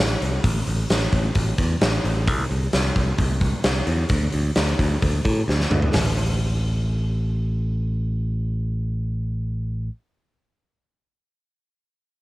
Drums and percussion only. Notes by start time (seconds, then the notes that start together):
0.22 open hi-hat
0.44 kick, open hi-hat
0.67 open hi-hat
0.90 snare, open hi-hat
1.12 kick, open hi-hat
1.35 kick, open hi-hat
1.58 kick, open hi-hat
1.81 snare, open hi-hat
2.05 open hi-hat
2.27 kick, open hi-hat
2.51 open hi-hat
2.73 snare, open hi-hat
2.96 kick, open hi-hat
3.18 kick, open hi-hat
3.41 kick, open hi-hat
3.64 snare, open hi-hat
3.87 open hi-hat
4.09 kick, open hi-hat
4.32 open hi-hat
4.56 snare, open hi-hat
4.79 kick, open hi-hat
5.02 kick, open hi-hat
5.25 kick, open hi-hat
5.49 snare
5.60 snare
5.71 mid tom
5.82 floor tom
5.94 snare, floor tom, open hi-hat